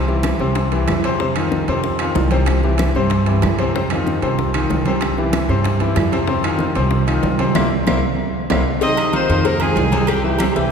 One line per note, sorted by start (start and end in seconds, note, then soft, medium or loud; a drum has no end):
0.00 0.34 C2 medium
0.08 0.34 E3 medium
0.08 0.34 E4 medium
0.08 0.34 G4 medium
0.08 high bongo soft
0.08 high conga soft
0.23 high bongo medium
0.23 high conga loud
0.23 high timbale medium
0.23 low timbale medium
0.23 claves medium
0.39 0.84 C2 loud
0.39 0.66 C3 medium
0.39 0.66 C4 medium
0.39 0.67 C5 medium
0.39 high bongo soft
0.39 high conga soft
0.55 high bongo medium
0.55 high conga soft
0.55 high timbale medium
0.72 0.98 E3 medium
0.72 0.98 E4 medium
0.72 0.99 G4 medium
0.72 high bongo soft
0.72 high conga soft
0.72 high timbale medium
0.88 1.62 F2 medium
0.88 high bongo soft
0.88 low bongo medium
0.88 high conga medium
0.88 high timbale medium
0.88 low timbale medium
0.88 claves medium
1.04 1.17 C3 medium
1.04 1.17 C4 loud
1.04 1.18 C5 loud
1.04 high timbale medium
1.20 1.33 C3 medium
1.20 1.33 C4 medium
1.20 1.33 C5 medium
1.20 high bongo medium
1.20 high conga soft
1.36 1.62 D#3 medium
1.36 1.62 D#4 medium
1.36 1.63 F4 medium
1.36 high bongo soft
1.36 high conga soft
1.36 high timbale medium
1.36 claves medium
1.52 high bongo medium
1.52 high conga medium
1.52 low timbale medium
1.68 2.12 F2 medium
1.68 1.94 C3 medium
1.68 1.94 C4 medium
1.68 1.94 C5 loud
1.68 high bongo soft
1.68 high conga soft
1.68 high timbale medium
1.84 high bongo medium
1.84 high conga soft
1.99 2.26 D#3 medium
1.99 2.26 D#4 medium
1.99 2.26 F4 medium
1.99 high bongo soft
1.99 high conga soft
1.99 high timbale medium
1.99 claves medium
2.15 2.89 C2 medium
2.15 high bongo soft
2.15 low bongo medium
2.15 high conga medium
2.15 low timbale medium
2.31 2.58 C3 medium
2.31 2.57 C4 loud
2.31 2.58 C5 medium
2.31 high conga medium
2.31 high timbale medium
2.46 high bongo medium
2.46 high conga soft
2.46 high timbale loud
2.46 claves medium
2.63 2.89 E3 medium
2.63 2.90 E4 medium
2.63 2.90 G4 medium
2.63 high bongo soft
2.63 high conga soft
2.78 high bongo medium
2.78 high conga loud
2.78 high timbale medium
2.78 low timbale medium
2.78 claves medium
2.95 3.39 G2 loud
2.95 3.21 C3 loud
2.95 3.22 C4 medium
2.95 3.22 C5 loud
2.95 high bongo soft
2.95 high conga soft
3.10 high bongo medium
3.10 high conga soft
3.10 high timbale medium
3.26 3.53 E3 medium
3.26 3.53 E4 medium
3.26 3.53 G4 medium
3.26 high bongo soft
3.26 high conga soft
3.26 high timbale medium
3.42 4.17 F2 medium
3.42 high bongo soft
3.42 low bongo medium
3.42 high conga medium
3.42 high timbale medium
3.42 low timbale medium
3.42 claves medium
3.59 3.72 C3 medium
3.59 3.72 C4 medium
3.59 3.72 C5 medium
3.59 high timbale medium
3.75 3.88 C3 medium
3.75 3.88 C4 medium
3.75 3.88 C5 medium
3.75 high bongo medium
3.75 high conga soft
3.90 4.17 D#3 medium
3.90 4.17 D#4 medium
3.90 4.17 F4 medium
3.90 high bongo soft
3.90 high conga soft
3.90 high timbale medium
3.90 claves medium
4.06 high bongo medium
4.06 high conga medium
4.06 low timbale medium
4.22 4.67 C2 medium
4.22 4.49 C3 medium
4.22 4.49 C4 medium
4.22 4.49 C5 medium
4.22 high bongo soft
4.22 high conga soft
4.22 high timbale medium
4.38 high bongo medium
4.38 high conga soft
4.54 4.80 D#3 medium
4.54 4.81 D#4 medium
4.54 4.81 F4 medium
4.54 high bongo soft
4.54 high timbale loud
4.54 claves medium
4.70 5.44 C2 medium
4.70 high bongo soft
4.70 low bongo medium
4.70 high conga medium
4.70 low timbale medium
4.85 5.12 C3 medium
4.85 5.13 C4 loud
4.85 5.13 C5 medium
4.85 high conga medium
4.85 high timbale medium
5.01 high bongo medium
5.01 high conga soft
5.01 high timbale medium
5.01 claves medium
5.17 5.44 E3 medium
5.17 5.44 E4 medium
5.17 5.44 G4 medium
5.17 high bongo soft
5.17 high conga soft
5.33 high bongo medium
5.33 high conga loud
5.33 high timbale medium
5.33 low timbale medium
5.33 claves medium
5.49 5.93 G2 medium
5.49 5.75 C3 loud
5.49 5.76 C4 medium
5.49 5.76 C5 medium
5.49 high bongo soft
5.49 high conga soft
5.64 high bongo medium
5.64 high conga soft
5.64 high timbale medium
5.80 6.07 E3 medium
5.80 6.07 E4 medium
5.80 6.07 G4 medium
5.80 high bongo soft
5.80 high conga soft
5.80 high timbale medium
5.96 6.70 F2 medium
5.96 high bongo soft
5.96 low bongo medium
5.96 high conga medium
5.96 high timbale medium
5.96 low timbale medium
5.96 claves medium
6.12 6.25 C3 medium
6.12 6.26 C4 loud
6.12 6.26 C5 loud
6.12 high conga medium
6.12 high timbale medium
6.28 6.41 C3 medium
6.28 6.41 C4 medium
6.28 6.42 C5 medium
6.28 high bongo medium
6.28 high conga soft
6.43 6.70 D#3 medium
6.43 6.70 D#4 medium
6.43 6.70 F4 medium
6.43 high bongo soft
6.43 high conga soft
6.43 high timbale loud
6.43 claves medium
6.59 high bongo medium
6.59 high conga medium
6.59 low timbale medium
6.75 7.20 C2 loud
6.75 7.02 C3 medium
6.75 7.02 C4 medium
6.75 7.02 C5 medium
6.75 high bongo soft
6.75 high conga soft
6.75 high timbale medium
6.91 high bongo medium
6.91 high conga soft
7.07 7.33 D#3 medium
7.07 7.33 D#4 medium
7.07 7.34 F4 medium
7.07 high bongo soft
7.07 high conga soft
7.07 high timbale medium
7.07 claves medium
7.23 7.53 C2 medium
7.23 high bongo soft
7.23 low bongo medium
7.23 high conga medium
7.23 low timbale medium
7.39 7.52 C3 medium
7.39 7.53 C4 loud
7.39 7.53 C5 medium
7.39 high conga medium
7.39 high timbale medium
7.55 7.67 C2 medium
7.55 7.65 A#3 loud
7.55 7.65 C4 loud
7.55 7.65 E4 loud
7.55 low bongo loud
7.55 high conga loud
7.55 high timbale medium
7.55 claves loud
7.87 7.99 C2 loud
7.87 7.97 A#3 loud
7.87 7.97 C4 loud
7.87 7.97 E4 loud
7.87 low bongo medium
7.87 high conga loud
7.87 high timbale medium
7.87 claves loud
8.50 8.62 C2 medium
8.50 8.60 A#3 loud
8.50 8.60 C4 loud
8.50 8.61 E4 medium
8.50 low bongo loud
8.50 high conga loud
8.50 high timbale loud
8.50 claves loud
8.81 9.07 C3 medium
8.81 9.08 C4 medium
8.81 9.12 D#4 medium
8.81 9.08 C5 loud
8.81 9.12 D#5 loud
8.81 cowbell loud
8.81 high conga soft
8.81 low agogo medium
8.97 high conga soft
8.97 low agogo loud
8.97 claves medium
9.13 9.26 D#3 medium
9.13 9.46 C4 medium
9.13 9.26 D#4 medium
9.13 9.26 F4 medium
9.13 9.46 C5 loud
9.13 cowbell medium
9.13 high conga medium
9.13 low timbale medium
9.13 low agogo medium
9.29 9.73 F2 loud
9.29 9.42 D#3 medium
9.29 9.42 D#4 medium
9.29 9.43 F4 medium
9.29 cowbell medium
9.29 high conga soft
9.45 9.58 C3 medium
9.45 9.61 A#3 medium
9.45 9.58 C4 medium
9.45 9.62 A#4 loud
9.45 9.58 C5 medium
9.45 cowbell loud
9.45 high conga soft
9.45 low agogo medium
9.60 9.87 D#3 medium
9.60 10.05 G#3 medium
9.60 9.87 D#4 medium
9.60 9.87 F4 medium
9.60 10.06 G#4 loud
9.60 high conga soft
9.60 low agogo loud
9.60 claves medium
9.76 10.50 C2 medium
9.76 cowbell medium
9.76 high conga medium
9.76 low timbale medium
9.92 10.18 C3 loud
9.92 10.19 C4 loud
9.92 10.19 C5 loud
9.92 cowbell medium
9.92 high conga medium
9.92 low agogo medium
10.07 10.23 G3 medium
10.07 10.24 G4 loud
10.07 cowbell loud
10.07 high conga soft
10.07 low agogo loud
10.07 claves medium
10.24 10.37 E3 medium
10.24 10.71 G3 medium
10.24 10.37 E4 medium
10.24 10.37 G4 medium
10.24 10.71 G4 medium
10.24 high conga soft
10.39 10.53 C3 medium
10.39 10.53 C4 loud
10.39 10.54 C5 medium
10.39 cowbell medium
10.39 high conga loud
10.39 low timbale medium
10.39 low agogo loud
10.39 claves medium
10.56 10.71 C2 medium
10.56 10.71 E3 medium
10.56 10.71 E4 medium
10.56 10.71 G4 medium
10.56 cowbell medium
10.56 high conga soft